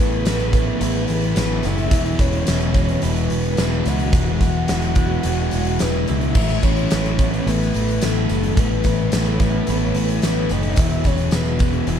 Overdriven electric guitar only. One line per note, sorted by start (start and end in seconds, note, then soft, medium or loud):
0.00 0.26 A2 medium
0.00 0.25 E3 medium
0.00 0.25 A3 medium
0.00 0.27 B3 medium
0.00 0.28 E4 medium
0.25 0.80 E3 medium
0.25 0.54 A3 medium
0.25 0.54 B3 medium
0.25 0.52 E4 medium
0.53 0.80 A3 medium
0.53 0.81 B3 medium
0.53 0.82 E4 medium
0.80 1.36 A2 loud
0.80 1.35 E3 loud
0.80 1.09 A3 loud
0.80 1.09 B3 loud
0.80 1.07 E4 loud
1.08 1.35 A3 medium
1.08 1.36 B3 medium
1.08 1.38 E4 medium
1.35 1.91 E3 medium
1.35 1.65 A3 medium
1.35 1.65 B3 medium
1.35 1.64 E4 medium
1.64 1.92 A3 medium
1.64 1.92 B3 medium
1.64 1.92 E4 medium
1.91 3.01 E2 medium
1.91 2.47 B2 medium
1.91 2.21 E3 loud
1.91 2.20 G#3 medium
1.91 2.19 B3 loud
1.91 2.18 E4 loud
2.19 2.47 E3 medium
2.19 2.47 G#3 medium
2.19 2.48 B3 medium
2.19 2.49 E4 medium
2.47 2.76 E3 medium
2.47 2.75 G#3 medium
2.47 2.74 B3 medium
2.47 2.74 E4 medium
2.74 3.02 E3 medium
2.74 3.02 G#3 medium
2.74 3.03 B3 medium
2.74 3.04 E4 medium
3.02 3.58 E2 loud
3.02 3.58 B2 loud
3.02 3.32 E3 loud
3.02 3.31 G#3 loud
3.02 3.31 B3 loud
3.02 3.30 E4 loud
3.31 3.57 E3 medium
3.31 3.57 G#3 medium
3.31 3.58 B3 medium
3.31 3.60 E4 medium
3.58 3.89 E3 medium
3.58 3.87 G#3 medium
3.58 3.87 B3 medium
3.58 3.86 E4 medium
3.87 4.14 E3 medium
3.87 4.14 G#3 medium
3.87 4.15 B3 medium
3.87 4.15 E4 medium
4.13 4.69 E2 medium
4.13 4.69 B2 medium
4.13 4.44 E3 medium
4.13 4.42 G#3 loud
4.13 4.42 B3 medium
4.13 4.41 E4 medium
4.42 4.69 E3 medium
4.42 4.69 G#3 medium
4.42 4.71 B3 medium
4.42 4.71 E4 medium
4.70 4.99 E3 medium
4.70 4.98 G#3 medium
4.70 4.98 B3 medium
4.70 4.97 E4 medium
4.97 5.25 E3 soft
4.97 5.25 G#3 medium
4.97 5.26 B3 medium
4.97 5.27 E4 medium
5.25 5.80 E2 medium
5.25 5.80 B2 medium
5.25 5.55 E3 loud
5.25 5.53 G#3 loud
5.25 5.54 B3 medium
5.25 5.52 E4 medium
5.53 5.79 E3 medium
5.53 5.79 G#3 medium
5.53 5.81 B3 medium
5.53 5.81 E4 medium
5.79 6.10 E3 medium
5.79 6.09 G#3 medium
5.79 6.09 B3 medium
5.79 6.08 E4 medium
6.09 6.36 E3 medium
6.09 6.35 G#3 medium
6.09 6.37 B3 medium
6.09 6.37 E4 medium
6.36 6.95 A2 medium
6.36 6.90 E3 loud
6.36 6.66 A3 medium
6.36 6.65 B3 loud
6.36 6.63 E4 loud
6.64 6.91 A3 medium
6.64 6.92 B3 medium
6.64 6.93 E4 medium
6.91 7.48 E3 medium
6.91 7.21 A3 medium
6.91 7.20 B3 medium
6.91 7.19 E4 medium
7.20 7.47 A3 medium
7.20 7.49 B3 medium
7.20 7.48 E4 medium
7.47 8.02 A2 loud
7.47 8.03 E3 medium
7.47 7.75 A3 medium
7.47 7.75 B3 loud
7.47 7.73 E4 loud
7.74 8.02 A3 medium
7.74 8.04 B3 medium
7.74 8.04 E4 medium
8.03 8.58 E3 medium
8.03 8.32 A3 medium
8.03 8.32 B3 medium
8.03 8.31 E4 medium
8.31 8.58 A3 medium
8.31 8.59 B3 medium
8.31 8.60 E4 medium
8.58 9.13 A2 medium
8.58 9.13 E3 medium
8.58 8.87 A3 loud
8.58 8.87 B3 medium
8.58 8.86 E4 medium
8.86 9.13 A3 medium
8.86 9.15 B3 medium
8.86 9.15 E4 medium
9.14 9.69 E3 medium
9.14 9.42 A3 medium
9.14 9.42 B3 medium
9.14 9.40 E4 medium
9.41 9.68 A3 medium
9.41 9.69 B3 medium
9.41 9.70 E4 medium
9.68 10.23 A2 loud
9.68 10.24 E3 loud
9.68 9.97 A3 loud
9.68 9.97 B3 loud
9.68 9.96 E4 loud
9.96 10.23 A3 medium
9.96 10.25 B3 medium
9.96 10.25 E4 medium
10.24 10.80 E3 medium
10.24 10.52 A3 medium
10.24 10.51 B3 medium
10.24 10.50 E4 medium
10.51 10.78 A3 medium
10.51 10.81 B3 medium
10.51 10.81 E4 medium
10.79 11.88 E2 loud
10.79 11.34 B2 loud
10.79 11.08 E3 medium
10.79 11.07 G#3 medium
10.79 11.06 B3 medium
10.79 11.05 E4 loud
11.06 11.33 E3 medium
11.06 11.34 G#3 medium
11.06 11.35 B3 medium
11.06 11.35 E4 medium
11.33 11.63 E3 medium
11.33 11.62 G#3 medium
11.33 11.62 B3 medium
11.33 11.61 E4 medium
11.61 11.88 E3 medium
11.61 11.88 G#3 medium
11.61 11.89 B3 medium
11.61 11.89 E4 medium
11.88 11.99 E2 medium
11.88 11.99 B2 loud
11.88 11.99 E3 loud
11.88 11.99 G#3 loud
11.88 11.99 B3 loud
11.88 11.99 E4 loud